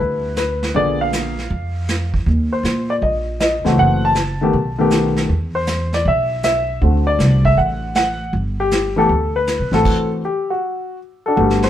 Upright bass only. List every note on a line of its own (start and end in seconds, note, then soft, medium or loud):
0.00 0.71 D2 medium
0.74 1.47 A#1 medium
1.50 2.22 F2 medium
2.26 2.61 D#2 medium
2.63 2.99 A#2 medium
3.02 3.61 A#1 medium
3.65 3.77 C#2 medium
3.78 4.50 F#1 medium
4.53 5.26 B1 medium
5.29 6.02 E2 medium
6.05 6.78 B1 medium
6.82 7.17 D2 medium
7.19 7.55 C2 medium
7.57 8.30 A1 medium
8.33 9.05 G1 medium
9.09 9.56 D2 medium
9.59 9.71 B1 medium
9.71 9.84 G#1 medium
11.37 11.70 G1 medium